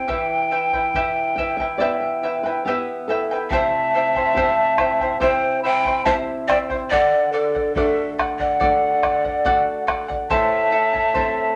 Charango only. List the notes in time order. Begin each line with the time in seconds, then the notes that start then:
0.08 E4 G4 B4 E5 G5
0.51 E4 B4 E5 G5
0.73 E4 B4 G5
0.95 E4 G4 B4 E5 G5
1.38 E4 B4 E5 G5
1.60 E4 B4 G5
1.80 E4 G4 B4 E5 G5
2.23 E4 B4 E5 G5
2.46 E4 B4 G5
2.67 E4 G4 B4 E5 G5
3.09 E4 B4 E5 G5
3.31 E4 B4 G5
3.52 E4 G4 C5 E5 G5
3.94 E4 C5 E5 G5
4.16 E4 C5 G5
4.36 E4 G4 C5 E5 G5
4.79 E4 C5 E5 G5
5.01 E4 C5 G5
5.20 E4 G4 C5 E5 G5
5.63 E4 C5 E5 G5
5.86 E4 C5 G5
6.05 E4 G4 C5 E5 G5
6.49 E4 C5 E5 G5
6.70 E4 C5 G5
6.92 A4 D5 F#5
7.34 A4 D5 F#5
7.55 D5 F#5
7.77 A4 D5 F#5
8.18 A4 D5 F#5
8.40 D5 F#5
8.60 A4 D5 F#5
9.03 A4 D5 F#5
9.24 D5 F#5
9.45 A4 D5 F#5
9.87 A4 D5 F#5
10.08 D5 F#5
10.30 E4 A4 C5 E5 A5
10.71 E4 A4 E5 A5
10.93 E4 A4 A5
11.14 E4 A4 C5 E5 A5